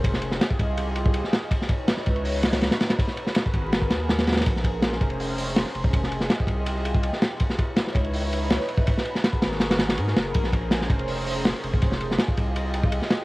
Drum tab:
RD |x---x---x---x---x---x---x---x---|x---x---x---x-x-----x-x-x-x-x-x-|x---x---x---x---x---x---x-x-xxxx|x---x---x---x-x---------x---x---|
HH |--------------------------------|----------------o---------------|--------------------------------|----------------o---o-----------|
SD |--o---o-o-----------------o-o---|--o-----o-o---------o-o-o-o-o-o-|--o---o-o-------o---o---o-o-oooo|--o-----o-o-------------o-o-----|
BD |o---------o-o---------o---------|o---o-------o-------------------|o---------o-o-----o-------------|o---o-------o-----------------o-|

RD |x---x---x---x---x---x---x---x---|x---x---x---x-x-----x---x---x---|x---x---x---x---x-x-x-x-x---x---|x---x---x---x-x---------x---x---|
HH |--------------------------------|----------------o---------------|--------------------------------|----------------o---o-----------|
SD |--o---o-o-----------------o-o---|--o-----o-o-------------o-o-----|--o---o-o---o-o-o-o-o-o---o-o---|--o-----o-o-------------o-o-----|
BD |o---------o-o---------o---------|o---o-------o-----------------o-|o---------o---------------------|o---o-------o-----------------o-|

RD |x---x---x---x---x---x---x---x---|
HH |--------------------------------|
SD |--o---o-o-----------------o-o---|
BD |o---------o-o---------o---------|